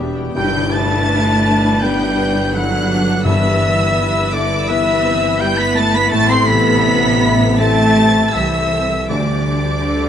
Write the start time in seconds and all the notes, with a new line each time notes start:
Already playing: E1 E2 B2 B3 D4 B4 D5 E5
0.00 G3 B3 D4 G4
0.16 B3 E4 G5
0.35 G1 G2 G3 D4 B4 G5 G6, tam-tam
0.55 D3
0.72 A3 A5 A6
0.92 D4
1.10 B4
1.29 D4
1.47 D5
1.65 B5
1.81 G3 B3 D4 B4 D5 G5 G6
2.02 B5
2.21 D5
2.38 B5
2.53 F#3 E4 A4 B4 F#5 F#6
2.74 D4
2.91 D4
3.09 D3
3.24 G2 E3 B3 E4 B4 E5 E6
3.45 G3
3.80 E4
3.97 B4
4.16 E4
4.32 D3 A4 D5 E5 D6
4.51 B5
4.66 E3 B3 E4 B4 E5 E6
4.87 B5
5.04 C4
5.23 B5
5.39 G3 B3 B4 G5 G6
5.57 B3 E4 B5 B6
5.75 A3 A5 A6
5.93 G3 B3 B5 B6
6.10 A1 A2 C3 A3 A4 A5 A6
6.29 E3 C4 C6 C7
6.46 C3 B3 B5 B6
6.85 A4
7.22 E5
7.40 A5
7.57 A3 C4 E4 A4 E5 A5 A6
7.96 E5
8.33 C2 E3 C4 A4 C5 E5 E6
8.52 A4
8.71 E4
8.90 E3
9.09 D2 D3 G3 D4 G4 D5 D6
9.28 A3
9.48 D4
9.87 A4